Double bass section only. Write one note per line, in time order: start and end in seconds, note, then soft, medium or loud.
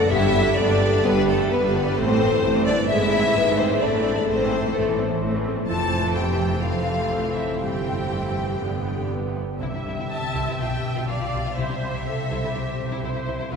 0.11 0.52 G1 medium
0.58 0.99 G1 medium
1.05 1.46 G1 medium
1.52 1.92 G1 medium
1.98 2.38 A1 medium
2.44 2.84 A1 medium
2.89 3.31 G#1 medium
3.36 3.77 G#1 medium
3.83 4.24 A1 medium
4.29 4.70 A1 medium
4.75 5.16 A1 medium
5.22 5.63 A1 medium
5.69 7.07 F1 soft
7.11 7.61 A1 soft
7.62 8.60 G1 soft
8.62 9.39 G1 soft
9.61 9.66 C2 soft
9.86 9.91 C2 soft
10.35 10.40 C2 soft
10.59 10.64 B1 medium
11.10 11.14 B1 soft
11.34 11.39 B1 medium
11.58 11.63 C2 medium
11.82 11.87 C2 soft
12.31 12.36 C2 soft
12.56 12.60 C2 soft
13.04 13.08 C2 soft
13.27 13.32 C2 soft
13.51 13.56 D2 medium